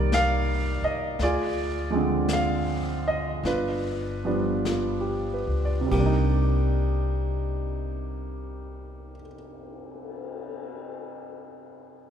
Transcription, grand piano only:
0, 0, Header, 1, 2, 480
1, 0, Start_track
1, 0, Key_signature, -3, "minor"
1, 0, Tempo, 1084991
1, 526, Time_signature, 4, 2, 24, 8
1, 1015, Tempo, 1149425
1, 1495, Tempo, 1204819
1, 1975, Tempo, 1271186
1, 2455, Tempo, 1304348
1, 4729, End_track
2, 0, Start_track
2, 0, Title_t, "Grand piano"
2, 0, Program_c, 0, 0
2, 0, Control_c, 0, 64, 127
2, 0, Note_on_c, 0, 51, 51
2, 0, Note_on_c, 0, 55, 47
2, 0, Note_on_c, 0, 58, 44
2, 0, Note_on_c, 0, 63, 51
2, 0, Note_on_c, 0, 70, 72
2, 0, Note_on_c, 0, 74, 77
2, 60, Note_off_c, 0, 74, 0
2, 63, Note_on_c, 0, 77, 99
2, 349, Note_off_c, 0, 77, 0
2, 373, Note_on_c, 0, 75, 69
2, 528, Note_off_c, 0, 51, 0
2, 529, Note_off_c, 0, 55, 0
2, 530, Note_off_c, 0, 63, 0
2, 531, Note_off_c, 0, 58, 0
2, 533, Control_c, 0, 64, 0
2, 535, Note_off_c, 0, 70, 0
2, 536, Note_off_c, 0, 75, 0
2, 544, Note_on_c, 0, 65, 56
2, 544, Note_on_c, 0, 74, 75
2, 546, Note_on_c, 0, 68, 56
2, 614, Control_c, 0, 64, 127
2, 843, Note_on_c, 0, 53, 50
2, 848, Note_on_c, 0, 56, 50
2, 859, Note_on_c, 0, 60, 48
2, 867, Note_on_c, 0, 50, 55
2, 1030, Note_on_c, 0, 77, 82
2, 1038, Note_off_c, 0, 74, 0
2, 1319, Note_off_c, 0, 77, 0
2, 1341, Note_on_c, 0, 75, 71
2, 1487, Note_off_c, 0, 65, 0
2, 1488, Note_off_c, 0, 68, 0
2, 1494, Note_off_c, 0, 53, 0
2, 1497, Note_off_c, 0, 56, 0
2, 1499, Note_on_c, 0, 62, 50
2, 1500, Note_on_c, 0, 65, 49
2, 1501, Control_c, 0, 64, 0
2, 1502, Note_off_c, 0, 60, 0
2, 1505, Note_off_c, 0, 50, 0
2, 1505, Note_on_c, 0, 71, 64
2, 1507, Note_off_c, 0, 75, 0
2, 1577, Control_c, 0, 64, 127
2, 1815, Note_on_c, 0, 53, 48
2, 1817, Note_off_c, 0, 62, 0
2, 1819, Note_on_c, 0, 59, 40
2, 1820, Note_on_c, 0, 55, 43
2, 1823, Note_on_c, 0, 62, 49
2, 1981, Note_off_c, 0, 65, 0
2, 1986, Note_on_c, 0, 65, 36
2, 2111, Note_on_c, 0, 67, 39
2, 2199, Note_off_c, 0, 65, 0
2, 2230, Note_off_c, 0, 71, 0
2, 2235, Note_on_c, 0, 71, 39
2, 2305, Note_off_c, 0, 67, 0
2, 2353, Note_on_c, 0, 74, 41
2, 2377, Note_off_c, 0, 71, 0
2, 2413, Note_on_c, 0, 48, 48
2, 2428, Note_off_c, 0, 55, 0
2, 2434, Note_on_c, 0, 55, 46
2, 2453, Note_on_c, 0, 67, 59
2, 2458, Note_on_c, 0, 58, 52
2, 2459, Note_off_c, 0, 53, 0
2, 2461, Note_off_c, 0, 59, 0
2, 2461, Control_c, 0, 64, 0
2, 2462, Note_off_c, 0, 62, 0
2, 2481, Note_on_c, 0, 62, 46
2, 2506, Note_on_c, 0, 63, 58
2, 2514, Note_off_c, 0, 74, 0
2, 2522, Control_c, 0, 64, 127
2, 3621, Note_off_c, 0, 48, 0
2, 3641, Note_off_c, 0, 55, 0
2, 3645, Note_off_c, 0, 67, 0
2, 3665, Note_off_c, 0, 58, 0
2, 3688, Note_off_c, 0, 62, 0
2, 3713, Note_off_c, 0, 63, 0
2, 4729, End_track
0, 0, End_of_file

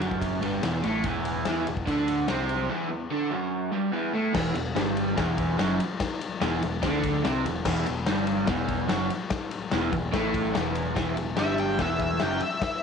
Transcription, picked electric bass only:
0, 0, Header, 1, 2, 480
1, 0, Start_track
1, 0, Key_signature, 1, "minor"
1, 0, Tempo, 413508
1, 1210, Time_signature, 4, 2, 24, 8
1, 14892, End_track
2, 0, Start_track
2, 0, Title_t, "Picked electric bass"
2, 0, Program_c, 0, 34
2, 4, Note_on_c, 0, 30, 85
2, 453, Note_off_c, 0, 30, 0
2, 474, Note_on_c, 0, 31, 95
2, 704, Note_off_c, 0, 31, 0
2, 723, Note_on_c, 0, 28, 89
2, 949, Note_off_c, 0, 28, 0
2, 973, Note_on_c, 0, 33, 93
2, 1195, Note_off_c, 0, 33, 0
2, 1212, Note_on_c, 0, 28, 99
2, 1658, Note_off_c, 0, 28, 0
2, 1696, Note_on_c, 0, 40, 96
2, 1917, Note_off_c, 0, 40, 0
2, 1943, Note_on_c, 0, 28, 83
2, 2161, Note_off_c, 0, 28, 0
2, 2180, Note_on_c, 0, 38, 96
2, 2623, Note_off_c, 0, 38, 0
2, 2660, Note_on_c, 0, 36, 82
2, 3103, Note_off_c, 0, 36, 0
2, 5043, Note_on_c, 0, 28, 103
2, 5270, Note_off_c, 0, 28, 0
2, 5279, Note_on_c, 0, 28, 83
2, 5508, Note_off_c, 0, 28, 0
2, 5519, Note_on_c, 0, 31, 93
2, 5970, Note_off_c, 0, 31, 0
2, 6006, Note_on_c, 0, 28, 99
2, 6453, Note_off_c, 0, 28, 0
2, 6487, Note_on_c, 0, 30, 89
2, 6710, Note_off_c, 0, 30, 0
2, 7447, Note_on_c, 0, 28, 102
2, 7670, Note_off_c, 0, 28, 0
2, 7692, Note_on_c, 0, 28, 85
2, 7912, Note_off_c, 0, 28, 0
2, 7929, Note_on_c, 0, 38, 97
2, 8373, Note_off_c, 0, 38, 0
2, 8417, Note_on_c, 0, 36, 92
2, 8633, Note_off_c, 0, 36, 0
2, 8646, Note_on_c, 0, 28, 81
2, 8868, Note_off_c, 0, 28, 0
2, 8885, Note_on_c, 0, 28, 99
2, 9106, Note_off_c, 0, 28, 0
2, 9147, Note_on_c, 0, 28, 78
2, 9358, Note_off_c, 0, 28, 0
2, 9376, Note_on_c, 0, 31, 102
2, 9814, Note_off_c, 0, 31, 0
2, 9841, Note_on_c, 0, 28, 99
2, 10286, Note_off_c, 0, 28, 0
2, 10332, Note_on_c, 0, 30, 92
2, 10549, Note_off_c, 0, 30, 0
2, 11287, Note_on_c, 0, 28, 99
2, 11506, Note_off_c, 0, 28, 0
2, 11530, Note_on_c, 0, 28, 83
2, 11748, Note_off_c, 0, 28, 0
2, 11767, Note_on_c, 0, 33, 101
2, 12210, Note_off_c, 0, 33, 0
2, 12242, Note_on_c, 0, 28, 99
2, 12687, Note_off_c, 0, 28, 0
2, 12728, Note_on_c, 0, 28, 91
2, 12947, Note_off_c, 0, 28, 0
2, 12973, Note_on_c, 0, 28, 73
2, 13190, Note_off_c, 0, 28, 0
2, 13207, Note_on_c, 0, 31, 92
2, 13651, Note_off_c, 0, 31, 0
2, 13685, Note_on_c, 0, 28, 93
2, 14131, Note_off_c, 0, 28, 0
2, 14176, Note_on_c, 0, 30, 91
2, 14394, Note_off_c, 0, 30, 0
2, 14892, End_track
0, 0, End_of_file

